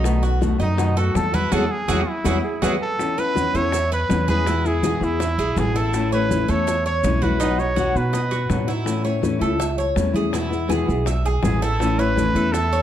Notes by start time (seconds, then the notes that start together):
Already playing: B1 D#4
0.03 B2 D#3 A3 B3 F#4, high bongo, high conga, maracas
0.23 F#4, high conga, maracas
0.41 B2 D#3 A3 B3 F#4, high bongo, high conga, maracas
0.58 F#2 A3 B3 D#4 F#4 D#5, high conga, maracas
0.77 B2 D#3 A3 B3 F#4, high bongo, high conga, maracas
0.96 A3 B3 F#4 A4, high conga, maracas
1.15 E2 A4, muted nylon-string guitar stroke, high bongo, low bongo, high conga, maracas
1.32 A3 B3 E4 F#4 B4, high conga, maracas
1.51 E2 F#3 G#3 B3 E4 F#4 G#4 A4, low bongo, high conga, maracas
1.71 G#4
1.88 E2 F#3 G#3 B3 E4 F#4 G#4, low bongo, high conga, maracas
2.08 E4
2.25 E2 F#3 G#3 B3 E4 F#4 G#4, low bongo, high conga, maracas
2.44 G#4
2.62 E2 F#3 G#3 B3 E4 F#4 G#4 B4, low bongo, high conga, maracas
2.82 A4
2.98 E3 B3 C#4 E4, high bongo, high conga, maracas
3.16 B3 C#4 E4 B4, high conga, maracas
3.35 E3 B3 C#4 E4, high bongo, high conga, maracas
3.54 E2 B3 C#4 E4 A4 C#5, high conga, maracas
3.72 E5, muted nylon-string guitar stroke, high bongo, high conga, maracas
3.92 B4, high conga, maracas
4.09 E2 E3 B3 C#4 E4, high bongo, low bongo, high conga, maracas
4.28 B3 C#4 E4 G#4 B4, high conga, maracas
4.46 B2 E3 G#3 B3 E4, high bongo, high conga, maracas
4.65 G#3 B3 E4 G#4, high bongo, high conga, maracas
4.83 B2 E3 G#3 B3 E4 G#4, high bongo, high conga, maracas
5.01 E2 G#3 B3 E4, high bongo, high conga, maracas
5.20 E5, muted nylon-string guitar stroke, high bongo, high conga, maracas
5.38 B1 G#4, high bongo, high conga, maracas
5.57 A1 B2 E3 G#3 B3 E4 G#4, high bongo, low bongo, high conga, maracas
5.74 G#3 B3 E4 A4, high conga, maracas
5.93 E3 A3 C#4 E4, high bongo, high conga, maracas
6.12 A3 C#4 E4 B4 C#5, high conga, maracas
6.29 E3 A3 C#4 E4, high bongo, high conga, maracas
6.48 E2 A3 C#4 E4 A4 C#5, high conga, maracas
6.67 E5, muted nylon-string guitar stroke, high bongo, high conga, maracas
6.86 C#5, high conga, maracas
7.03 B1 E3 A3 C#4 E4, high bongo, low bongo, high conga, maracas
7.22 A3 C#4 E4 F#4 B4, high conga, maracas
7.40 B2 F#3 B3 D#4 F#4, high bongo, high conga, maracas
7.58 B3 D#4 F#4 C#5, high bongo, high conga, maracas
7.76 B2 F#3 B3 D#4 F#4, high bongo, high conga, maracas
7.94 B2 B3 D#4 F#4 B4, high bongo, high conga, maracas
8.13 D#5, muted nylon-string guitar stroke, high bongo, high conga, maracas
8.31 F#4, high bongo, high conga, maracas
8.49 A2 B2 F#3 B3 D#4 F#4, high bongo, low bongo, high conga, maracas
8.67 B3 D#4 E4 F#4, high conga, maracas
8.85 E3 A3 C#4 E4, high bongo, high conga, maracas
9.04 A3 C#4 E4 C#5, high conga, maracas
9.22 E3 A3 C#4 E4, high bongo, high conga, maracas
9.39 C#2 A3 C#4 E4 A4, high conga, maracas
9.58 E5, muted nylon-string guitar stroke, high bongo, high conga, maracas
9.78 C#5, high conga, maracas
9.96 E2 E3 A3 C#4 E4, high bongo, low bongo, high conga, maracas
10.13 A3 C#4 E4 G#4, high conga, maracas
10.32 B2 E3 G#3 B3 E4, high bongo, high conga, maracas
10.50 G#3 B3 E4, high bongo, high conga, maracas
10.68 B2 E3 G#3 B3 E4 G#4, high bongo, high conga, maracas
10.86 B1 G#3 B3 E4, high bongo, high conga, maracas
11.06 E5, muted nylon-string guitar stroke, high bongo, high conga, maracas
11.25 G#4, high bongo, high conga, maracas
11.42 A1 B2 E3 G#3 B3 E4 G#4, high bongo, low bongo, high conga, maracas
11.61 G#3 B3 E4 A4, high conga, maracas
11.79 E3 A3 C#4 E4, high bongo, high conga, maracas
11.98 A3 C#4 E4 B4 C#5, high conga, maracas
12.16 E3 A3 C#4 E4, high bongo, high conga, maracas
12.34 E2 A3 C#4 E4 A4, high conga, maracas
12.52 A4 E5, muted nylon-string guitar stroke, high bongo, high conga, maracas
12.73 C#5, high conga, maracas